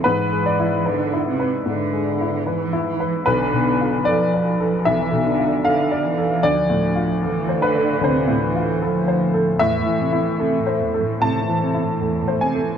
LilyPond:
<<
  \new Staff \with { instrumentName = "Upright piano" } { \time 4/4 \key a \minor \tempo 4 = 75 << { b'8 d''4. r2 | b'4 d''4 e''4 f''4 | d''4. b'8 c''2 | e''2 a''4. gis''8 | } \\ { \tuplet 3/2 { gis,8 gis8 e'8 b'8 e'8 b'8 gis,8 gis8 e'8 b'8 e'8 b'8 } | \tuplet 3/2 { b,,8 b,8 f'8 a'8 d''8 a'8 b,,8 b,8 f'8 a'8 d''8 a'8 } | \tuplet 3/2 { d,8 a,8 f'8 a'8 c''8 a'8 d,8 a,8 f'8 a'8 c''8 a'8 } | \tuplet 3/2 { a,8 e8 e'8 a'8 c''8 a'8 a,8 e8 e'8 a'8 c''8 a'8 } | } >> }
  \new Staff \with { instrumentName = "Cello" } { \clef bass \time 4/4 \key a \minor e4 d8 c8 d4 e8 e8 | d4 f4 e8 d8 d8 e8 | f4 e8 d8 c8 e8 f4 | e,16 a,16 c16 e16 c16 a,16 e,16 a,16 c16 e16 c16 a,16 e,16 a,16 c16 e16 | }
>>